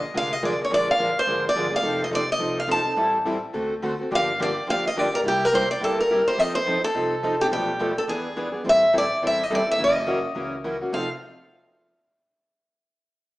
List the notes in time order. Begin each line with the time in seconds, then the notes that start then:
Already playing: D#5
0.14 F1 D3 F3 G#3 A#3 D4 F4 G#4 A#4 F5
0.33 D#5
0.43 D3 F3 G#3 A#3 D4 F4 G#4 A#4 D5
0.59 A#3 D4 G#4
0.65 C#5
0.70 A#1 D3 F3 G#3 A#3 D4 F4 G#4 A#4 D5
0.91 F5
0.99 D3 F3 G#3 A#3 D4 F4 G#4 A#4
1.19 C5
1.27 G#1 D3 F3 G#3 A#3 D4 F4 G#4 A#4
1.49 D5
1.56 G1 D3 F3 G#3 A#3 D4 F4 G#4 A#4
1.71 A#3 D4 G#4
1.76 F5
1.82 F1 F3 C4 D#4 A4
2.04 D#5
2.11 F3 C4 D#4 A4
2.15 D5
2.32 D#5
2.38 C2 F3 C4 D#4 A4
2.60 F5
2.67 F3 C4 D#4 A4 A5
2.83 C4 D#4 A4
2.97 A1 E3 G3 C4 E4 A4
3.25 E3 G3 C4 E4 A4
3.53 D2 D3 A3 C4 F#4 A4
3.82 D3 A3 C4 F#4 A4
4.00 C4 F#4 A4
4.11 G1 D3 F3 A#3 D4 G4
4.15 F5
4.40 D3 F3 A#3 D4 G4 D5
4.68 D2 D3 F3 A#3 D4 G4 F5
4.87 D#5
4.97 D3 F3 A#3 D4 G4 D5
5.13 A#3 D4 G4 A#4
5.24 C2 C3 G3 A#3 E4 G4
5.28 G4
5.45 A#4
5.54 C3 G3 A#3 E4 G4 C5
5.71 D5
5.80 G1 C3 G3 A#3 E4 G4 A4
6.00 A#4
6.11 C3 G3 A#3 E4 G4
6.27 A#3 E4 G4 C5
6.37 F2 F3 C4 D#4 A4 D#5
6.55 C5
6.67 F3 C4 D#4 A4
6.84 A4
6.94 C2 F3 C4 D#4 A4
7.23 F3 C4 D#4 A4
7.41 C4 D#4 G4 A4
7.51 B1 B2 F3 A3 D4 G4 A4 B4
7.80 B2 F3 A3 D4 A4 B4
7.98 A4
8.07 E2 E3 B3 D4 G#4 B4
8.36 E3 B3 D4 G#4 B4
8.52 B3 D4 G#4
8.64 A1 E3 G3 C4 E4 A4
8.69 E5
8.93 E3 G3 C4 E4 A4
8.98 D5
9.22 A1 E3 G3 C4 E4 A4
9.27 E5
9.43 D#5
9.50 G1 E3 G3 C4 E4 A4
9.55 D5
9.67 C4 E4 A4
9.71 E5
9.78 F#1 C#3 E3 F#3 A#3 C#4 E4 F#4 A#4
9.84 D#5
10.06 C#3 E3 F#3 A#3 C#4 E4 F#4 A#4
10.35 C#2 C#3 E3 F#3 A#3 C#4 E4 F#4 A#4
10.64 C#3 E3 F#3 A#3 C#4 E4 F#4 A#4
10.82 A#3 C#4 F#4
10.92 F1 F3 C4 D#4 A4 F5